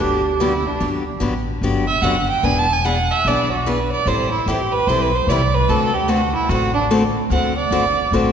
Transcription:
Already playing: D4
0.00 D2 D3 F#3 B3 D4 G4
0.40 D3 F#3 B3 D4 E4 G4
0.67 D4
0.80 G1 D3 F#3 B3 D4 G4
1.20 A1 D3 F#3 B3 D4 G4
1.61 G1 D3 F#3 B3 D4 G4
1.87 E5
2.02 F#1 D3 F#3 B3 D4 G4 F#5
2.29 G5
2.43 E1 E3 B3 D4 G#4 G#5
2.58 A5
2.73 G#5
2.85 E3 B3 D4 G#4 F#5
3.11 E5
3.25 B1 E3 B3 D4 G#4 D5
3.51 F#4
3.66 E3 B3 D4 G#4 B4
3.92 D5
4.06 A1 E3 G3 C4 E4 A4 C5
4.31 E4
4.46 A1 E3 G3 C4 E4 G4 A4
4.72 B4
4.87 B1 E3 G3 C4 E4 A4 C5
5.02 B4
5.15 C5
5.27 C2 E3 G3 C4 E4 A4 D5
5.54 B4
5.68 D2 D3 A3 C4 F#4 A4
5.94 G4
6.08 D3 A3 C4 F#4 A4
6.34 E4
6.49 A1 D3 A3 C4 F#4 A4
6.73 D4
6.91 D3 A3 C4 F#4 A4
7.30 D2 D3 A3 C4 F#4 A4 F#5
7.57 D5
7.71 G1 D3 A3 C4 F#4 A4
8.12 A1 D3 A3 C4 F#4 A4

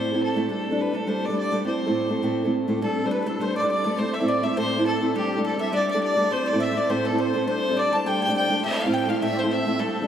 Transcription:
Already playing: A2 A3 C4 E4 A4 C5
0.13 A2 A3 C4 E4 A4
0.23 A4
0.35 A2 A3 C4 E4 A4
0.49 G3 A3 D4 A4
0.71 G3 A3 D4 A4
0.81 B4
0.93 G3 A3 D4 A4
1.07 G3 A3 D4 A4 C5
1.25 A4 D5
1.29 G3 A3 D4
1.39 D5
1.52 G3 A3 D4 A4
1.64 A3 C4 E4 A4 C5
1.86 A2 A3 C4 E4 A4
2.08 A3 C4 E4 A4
2.22 A2 A3 C4 E4 A4
2.44 A2 A3 C4 E4 A4
2.68 A2 A3 C4 E4 A4
2.81 G3 A3 D4 A4
3.04 G3 A3 D4 A4 C5
3.11 B4
3.23 G3 A4 B4
3.27 A3 D4 A4
3.39 G3 A3 D4 A4 C5
3.56 D5
3.63 G3 A3 D4 A4
3.70 D5
3.84 G3 A3 D4 A4 D5
3.97 A3 C4 E4 A4 C5
4.13 E5
4.21 A2 A3 C4 E4 A4
4.26 D5
4.42 A3 C4 E4 A4 E5
4.56 A2 A3 C4 E4 A4 C5
4.78 A2 A3 C4 E4 A4
4.86 A4
5.01 A2 A3 C4 E4 A4
5.14 G3 A3 D4 G4 A4
5.37 G3 A3 D4 A4
5.44 A4
5.58 G3 A3 D4 A4 E5
5.70 G3 A3 D4 A4 D5 E5
5.87 D5
5.95 G3 A3 D4 A4
6.02 D5
6.17 G3 A3 D4 A4
6.31 A3 C4 E4 A4 C5
6.46 D5
6.53 A2 A3 C4 E4 A4
6.59 E5
6.63 E5
6.74 A3 C4 E4 A4 D5
6.88 A2 A3 C4 E4 A4 C5
7.03 A4
7.11 A2 A3 C4 E4 A4
7.18 C5
7.34 A2 A3 C4 E4 A4
7.47 G3 A3 D4 A4 C5
7.70 G3 A3 D4 A4
7.77 D5
7.92 G3 A3 D4 A4 A5
8.06 G3 A3 D4 A4 G5
8.22 G5
8.28 G3 A3 D4 A4
8.35 G5
8.49 G3 A3 D4 A4
8.63 A3 C4 E4 A4 E5
8.79 F5
8.85 A2 A3 C4 E4 A4
8.93 G5
9.07 A3 C4 E4 A4 F5
9.21 A2 A3 C4 E4 A4 E5
9.33 C5 D5
9.39 C5
9.43 A2 A3 C4 E4 A4
9.49 E5
9.66 A2 A3 C4 E4 A4
9.79 G3 A3 D4 A4
10.02 G3 A3 D4 A4

